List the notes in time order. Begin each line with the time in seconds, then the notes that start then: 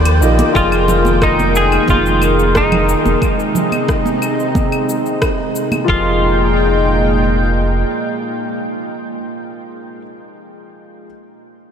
Already playing: D#2 D#3 F3 D#4 F4 G4 D5 G5
0.05 closed hi-hat, cabasa, claves
0.20 A#1 D#3 D#4 F4 G4 D#5, cabasa
0.39 closed hi-hat, high conga, cabasa
0.52 F1 D#3 F3 G#3 A#3 F4 G#4 A#4 G5, kick, cabasa
0.57 D#5
0.72 cabasa, claves
0.88 low conga, cabasa
1.05 high conga, cabasa
1.22 D#4, kick, cross-stick, cabasa, claves
1.39 high conga, cabasa
1.56 G#4, cabasa
1.72 cabasa, claves
1.88 F1 F4, kick, high conga, cabasa
2.06 cabasa
2.22 cabasa, claves
2.39 cabasa
2.55 D#4, kick, cross-stick, cabasa
2.72 low conga, claves
2.89 cabasa
3.05 F1, high conga, cabasa
3.22 C3 D#4, kick, cabasa, claves
3.40 cabasa
3.55 low conga, cabasa
3.72 high conga, cabasa, claves
3.88 kick, cross-stick, cabasa
4.06 high conga, cabasa
4.22 cabasa, claves
4.40 cabasa
4.55 kick, high conga, cabasa
4.72 cabasa, claves
4.89 cabasa
5.06 cabasa
5.22 kick, cross-stick, cabasa, claves
5.55 cabasa
5.72 high conga, cabasa, claves
5.84 F3 D#4 F4 G4, kick
5.88 F1 A#2 G#3 F4 G#4 A#4 D#5 G5